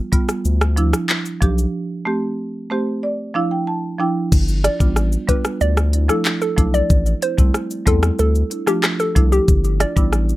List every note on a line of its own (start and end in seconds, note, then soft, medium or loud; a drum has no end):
0.12 0.25 G3 medium
0.12 0.26 B3 medium
0.12 0.26 F4 medium
0.12 kick loud
0.12 closed hi-hat medium
0.12 shaker medium
0.29 cross-stick medium
0.29 shaker medium
0.45 0.94 D2 loud
0.45 shaker medium
0.61 cross-stick loud
0.61 shaker medium
0.76 0.90 F3 medium
0.76 0.90 D4 medium
0.76 0.91 E4 loud
0.76 closed hi-hat medium
0.76 shaker soft
0.93 cross-stick loud
0.93 shaker medium
1.09 clap loud
1.09 shaker medium
1.25 shaker medium
1.41 1.66 B1 loud
1.41 1.54 F3 medium
1.41 1.55 D4 medium
1.41 1.55 G4 loud
1.41 kick loud
1.41 closed hi-hat medium
1.41 shaker soft
1.58 shaker medium
2.05 2.19 A3 medium
2.05 2.19 C4 medium
2.05 2.20 G4 loud
2.70 2.83 A3 medium
2.70 2.84 C4 medium
2.70 2.84 G4 loud
2.70 3.01 C5 medium
3.03 3.33 D5 medium
3.34 3.48 F3 medium
3.34 3.48 D4 medium
3.34 3.49 E4 medium
3.34 3.50 F5 medium
3.51 3.66 G5 medium
3.67 3.98 A5 medium
3.99 4.12 F3 medium
3.99 4.13 D4 medium
3.99 4.13 E4 loud
3.99 4.30 G5 medium
4.32 4.69 G1 loud
4.32 kick loud
4.32 crash loud
4.32 shaker medium
4.48 shaker medium
4.63 4.70 D4 medium
4.63 4.71 F4 medium
4.63 4.78 D5 medium
4.63 cross-stick medium
4.63 closed hi-hat medium
4.63 shaker medium
4.79 5.17 A1 medium
4.79 4.93 G3 medium
4.79 4.93 B3 medium
4.79 4.93 D4 medium
4.79 4.94 F4 medium
4.79 kick loud
4.79 shaker medium
4.96 cross-stick medium
4.96 shaker medium
5.12 shaker medium
5.27 5.41 G3 medium
5.27 5.41 B3 medium
5.27 5.42 D4 medium
5.27 5.42 F4 medium
5.27 5.43 B4 medium
5.27 kick medium
5.27 closed hi-hat medium
5.27 shaker medium
5.45 cross-stick loud
5.45 shaker medium
5.61 6.10 D2 loud
5.61 5.75 D5 medium
5.61 shaker medium
5.77 cross-stick loud
5.77 shaker medium
5.92 5.99 D4 medium
5.92 6.00 E4 medium
5.92 closed hi-hat medium
5.92 shaker medium
6.08 6.22 F3 medium
6.08 6.22 A3 medium
6.08 6.23 D4 medium
6.08 6.23 E4 medium
6.08 6.23 A4 medium
6.08 cross-stick medium
6.08 shaker medium
6.25 clap loud
6.25 shaker medium
6.42 6.56 A4 medium
6.42 shaker medium
6.57 6.82 B1 loud
6.57 6.70 F3 medium
6.57 6.71 A3 medium
6.57 6.71 D4 medium
6.57 6.71 E4 medium
6.57 kick medium
6.57 closed hi-hat medium
6.57 shaker soft
6.74 6.88 D5 medium
6.74 shaker medium
6.90 7.14 A1 loud
6.90 kick loud
6.90 shaker medium
7.06 shaker medium
7.21 7.28 C4 medium
7.21 7.29 E4 medium
7.21 7.37 C5 medium
7.21 closed hi-hat medium
7.21 shaker medium
7.38 7.51 C2 medium
7.38 7.51 G3 medium
7.38 7.51 A3 medium
7.38 7.52 C4 medium
7.38 7.52 E4 medium
7.38 kick loud
7.38 shaker medium
7.54 cross-stick medium
7.54 shaker medium
7.71 shaker medium
7.86 8.11 E2 medium
7.86 7.99 G3 medium
7.86 8.00 A3 medium
7.86 8.00 C4 medium
7.86 8.00 E4 medium
7.86 8.01 A4 medium
7.86 kick medium
7.86 closed hi-hat medium
7.86 shaker medium
8.03 cross-stick loud
8.03 shaker medium
8.19 8.44 D2 loud
8.19 8.33 A4 medium
8.19 shaker medium
8.35 shaker medium
8.50 8.57 D4 medium
8.50 8.58 E4 medium
8.50 closed hi-hat medium
8.50 shaker soft
8.67 8.80 F3 medium
8.67 8.80 A3 medium
8.67 8.81 D4 medium
8.67 8.81 F4 medium
8.67 8.82 G4 medium
8.67 cross-stick medium
8.67 shaker medium
8.83 cross-stick loud
8.83 clap loud
8.83 shaker medium
9.00 9.14 A4 medium
9.00 shaker medium
9.15 9.40 C2 medium
9.15 9.28 F3 medium
9.15 9.29 A3 medium
9.15 9.29 D4 medium
9.15 9.29 E4 medium
9.15 kick medium
9.15 closed hi-hat medium
9.15 shaker soft
9.32 9.46 G4 medium
9.32 shaker medium
9.48 9.85 G1 loud
9.48 kick loud
9.48 shaker medium
9.64 shaker medium
9.80 9.87 D4 medium
9.80 9.87 F4 medium
9.80 9.94 D5 medium
9.80 cross-stick medium
9.80 closed hi-hat medium
9.80 shaker medium
9.96 10.33 A1 medium
9.96 10.09 G3 medium
9.96 10.09 B3 medium
9.96 10.10 D4 medium
9.96 10.10 E4 medium
9.96 kick loud
9.96 shaker medium
10.13 cross-stick medium
10.13 shaker medium
10.29 shaker medium